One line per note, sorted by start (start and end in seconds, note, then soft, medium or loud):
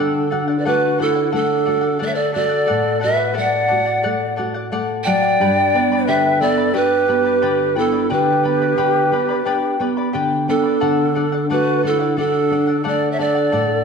0.00 2.65 D3 medium
0.00 0.60 D4 medium
0.00 0.29 A4 medium
0.00 0.60 A4 medium
0.00 0.30 D5 medium
0.00 0.31 F#5 medium
0.30 0.65 F#4 soft
0.30 0.48 A4 medium
0.30 0.48 D5 medium
0.30 0.46 F#5 medium
0.48 0.65 D5 soft
0.48 0.65 F#5 soft
0.59 0.68 B4 soft
0.59 0.68 D5 medium
0.65 0.99 A3 medium
0.65 1.01 F#4 medium
0.65 0.97 A4 medium
0.65 1.03 B4 medium
0.65 0.97 D5 medium
0.65 0.99 F#5 medium
0.98 1.33 E4 medium
0.98 1.32 F#4 medium
0.98 1.15 A4 medium
0.98 1.34 A4 medium
0.98 1.15 D5 medium
0.98 1.14 F#5 medium
1.15 1.31 D5 soft
1.15 1.31 F#5 medium
1.32 1.66 A3 medium
1.32 1.98 D4 medium
1.32 1.64 A4 medium
1.32 1.98 A4 medium
1.32 1.65 D5 medium
1.32 1.65 F#5 medium
1.65 2.00 F#4 medium
1.65 1.82 A4 medium
1.65 1.81 D5 medium
1.65 1.80 F#5 medium
1.81 1.98 D5 soft
1.81 1.98 F#5 medium
1.99 2.34 A3 medium
1.99 2.31 A4 medium
1.99 2.32 D5 medium
1.99 2.08 D5 medium
1.99 2.32 F#5 medium
2.03 2.10 A4 medium
2.03 2.16 E5 medium
2.09 2.17 C#5 medium
2.15 2.35 A4 medium
2.15 2.34 D5 medium
2.32 2.50 A4 medium
2.32 2.49 D5 medium
2.32 2.98 D5 medium
2.32 2.48 F#5 medium
2.36 2.68 F#4 medium
2.36 2.99 A4 medium
2.49 2.66 D5 soft
2.49 2.66 F#5 medium
2.66 5.36 A2 medium
2.66 2.98 A4 medium
2.66 2.99 D5 medium
2.66 3.00 F#5 medium
2.99 3.17 A4 medium
2.99 3.17 D5 medium
2.99 3.34 E5 loud
2.99 3.15 F#5 medium
3.04 3.36 F#4 medium
3.04 3.35 B4 medium
3.16 3.33 D5 soft
3.16 3.34 F#5 soft
3.33 3.66 A4 medium
3.33 3.67 D5 medium
3.33 3.67 F#5 medium
3.33 4.34 F#5 medium
3.38 3.70 A3 medium
3.38 4.35 D5 medium
3.68 4.04 F#4 medium
3.68 3.86 A4 medium
3.68 3.86 D5 medium
3.68 3.85 F#5 medium
3.86 4.02 D5 soft
3.86 4.03 F#5 medium
4.03 4.38 A3 medium
4.03 4.35 A4 medium
4.03 4.36 D5 medium
4.03 4.37 F#5 medium
4.36 4.71 F#4 medium
4.36 4.54 A4 medium
4.36 4.54 D5 medium
4.36 4.53 F#5 medium
4.54 4.71 D5 soft
4.54 4.72 F#5 medium
4.72 5.05 A3 medium
4.72 5.04 A4 medium
4.72 5.05 D5 medium
4.72 5.05 F#5 medium
5.04 5.39 F#3 medium
5.04 5.22 A4 medium
5.04 6.07 D5 medium
5.04 5.23 D5 medium
5.04 5.21 F#5 medium
5.04 6.09 G5 loud
5.22 5.40 D5 soft
5.22 5.39 F#5 medium
5.40 8.07 G2 medium
5.40 5.74 G4 medium
5.40 5.74 B4 medium
5.40 5.74 D5 medium
5.40 5.74 G5 medium
5.40 5.74 B5 medium
5.75 6.07 B3 medium
5.75 5.91 B4 medium
5.75 5.91 D5 medium
5.75 5.91 G5 medium
5.75 5.91 B5 medium
5.92 6.07 B4 soft
5.92 6.07 D5 soft
5.92 6.08 B5 medium
6.06 6.41 D3 medium
6.06 6.42 G4 medium
6.06 6.42 B4 medium
6.06 6.40 B4 medium
6.06 6.40 D5 medium
6.06 6.43 E5 medium
6.06 6.39 G5 medium
6.06 6.41 B5 medium
6.41 6.74 B3 medium
6.41 6.76 A4 medium
6.41 6.57 B4 medium
6.41 6.77 D5 medium
6.41 6.57 D5 medium
6.41 6.58 G5 medium
6.41 6.57 B5 medium
6.58 6.73 B4 soft
6.58 6.73 D5 medium
6.58 6.73 B5 soft
6.74 7.08 D4 medium
6.74 7.08 G4 medium
6.74 7.78 G4 medium
6.74 7.07 B4 medium
6.74 7.80 B4 loud
6.74 7.08 D5 medium
6.74 7.07 G5 medium
6.74 7.08 B5 medium
7.08 7.42 B3 medium
7.08 7.25 B4 medium
7.08 7.24 D5 medium
7.08 7.25 G5 medium
7.08 7.23 B5 medium
7.24 7.41 B4 soft
7.24 7.41 D5 medium
7.24 7.41 B5 medium
7.42 7.76 D3 medium
7.42 7.76 G4 medium
7.42 7.75 B4 medium
7.42 7.75 D5 medium
7.42 7.74 G5 medium
7.42 7.75 B5 medium
7.75 8.10 B3 medium
7.75 8.11 E4 medium
7.75 8.11 A4 medium
7.75 7.93 B4 medium
7.75 7.92 D5 medium
7.75 7.93 G5 medium
7.75 7.91 B5 medium
7.92 8.09 B4 soft
7.92 8.09 D5 soft
7.92 8.09 B5 medium
8.10 8.77 D3 medium
8.10 8.44 G4 medium
8.10 10.10 G4 medium
8.10 8.43 B4 medium
8.10 10.11 B4 medium
8.10 8.44 D5 medium
8.10 8.42 G5 medium
8.10 8.44 B5 medium
8.43 8.78 B3 soft
8.43 8.61 B4 medium
8.43 8.61 D5 medium
8.43 8.61 G5 medium
8.43 8.61 B5 medium
8.62 8.77 B4 soft
8.62 8.77 D5 soft
8.62 8.77 B5 medium
8.77 9.11 D3 medium
8.77 9.12 G4 medium
8.77 9.11 B4 medium
8.77 9.12 D5 medium
8.77 9.11 G5 medium
8.77 9.12 B5 medium
9.12 9.45 B3 medium
9.12 9.29 B4 medium
9.12 9.29 D5 medium
9.12 9.29 G5 medium
9.12 9.28 B5 medium
9.29 9.45 B4 soft
9.29 9.45 D5 medium
9.29 9.46 B5 medium
9.45 9.79 D4 medium
9.45 9.80 G4 medium
9.45 9.79 B4 medium
9.45 9.80 D5 medium
9.45 9.78 G5 medium
9.45 9.80 B5 medium
9.80 10.13 B3 medium
9.80 9.97 B4 medium
9.80 9.96 D5 medium
9.80 9.97 G5 medium
9.80 9.96 B5 medium
9.97 10.13 B4 soft
9.97 10.13 D5 soft
9.97 10.14 B5 medium
10.13 10.47 D3 soft
10.13 10.47 G4 medium
10.13 10.48 B4 medium
10.13 10.48 D5 medium
10.13 10.47 G5 medium
10.13 10.48 B5 medium
10.48 10.81 B3 medium
10.48 11.46 D4 medium
10.48 11.46 A4 medium
10.48 10.64 B4 medium
10.48 10.64 D5 medium
10.48 10.65 G5 medium
10.48 10.62 B5 medium
10.63 10.82 B4 soft
10.63 10.80 D5 soft
10.63 10.81 B5 soft
10.80 13.49 D3 medium
10.80 11.14 A4 medium
10.80 11.14 D5 medium
10.80 11.15 F#5 medium
11.15 11.49 D4 soft
11.15 11.32 A4 medium
11.15 11.33 D5 medium
11.15 11.31 F#5 medium
11.32 11.49 D5 soft
11.32 11.49 F#5 medium
11.50 11.83 A3 medium
11.50 11.82 F#4 medium
11.50 11.82 A4 medium
11.50 11.82 B4 medium
11.50 11.82 D5 medium
11.50 11.84 F#5 medium
11.83 12.17 D4 medium
11.83 11.91 F#4 medium
11.83 12.00 A4 medium
11.83 12.17 A4 medium
11.83 12.00 D5 medium
11.83 11.98 F#5 medium
11.90 12.16 E4 medium
11.99 12.16 D5 soft
11.99 12.17 F#5 soft
12.17 12.82 D4 medium
12.17 12.50 F#4 medium
12.17 12.49 A4 medium
12.17 12.82 A4 medium
12.17 12.51 D5 medium
12.17 12.51 F#5 medium
12.51 12.84 D4 medium
12.51 12.68 A4 medium
12.51 12.68 D5 medium
12.51 12.66 F#5 medium
12.67 12.83 D5 soft
12.67 12.84 F#5 soft
12.84 13.18 A3 medium
12.84 13.17 A4 medium
12.84 13.11 A4 medium
12.84 13.18 D5 medium
12.84 13.18 F#5 medium
12.88 13.11 D5 medium
13.12 13.22 C#5 medium
13.12 13.22 E5 medium
13.18 13.52 D4 medium
13.18 13.35 A4 medium
13.18 13.84 A4 medium
13.18 13.35 D5 medium
13.18 13.84 D5 medium
13.18 13.34 F#5 medium
13.35 13.51 D5 soft
13.35 13.52 F#5 soft
13.52 13.84 A2 medium
13.52 13.84 A4 medium
13.52 13.84 D5 medium
13.52 13.84 F#5 medium